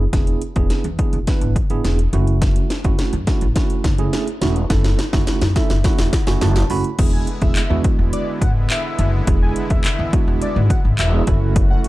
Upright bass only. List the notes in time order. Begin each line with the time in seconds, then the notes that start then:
0.13 E1
0.56 E1
0.70 muted upright bass stroke
0.84 E2
1.13 E1
1.41 G#1
1.70 G#1
1.84 E1
2.13 F#1
2.85 F#1
2.99 muted upright bass stroke
3.13 F#2
3.42 A1
3.84 F#1
4.42 E1
4.70 F#1
5.13 F#1
5.27 muted upright bass stroke
5.42 F#2
5.70 F#1
5.99 E1
6.27 F#1
6.42 F#1
6.70 F#1
6.99 E1
7.42 E1
7.56 muted upright bass stroke
7.70 E2
7.99 E1
8.41 G#1
8.99 F#1
9.27 E1
9.70 E1
9.85 muted upright bass stroke
9.99 E2
10.27 E1
10.56 G#1
10.85 G#1
10.99 E1
11.27 F#1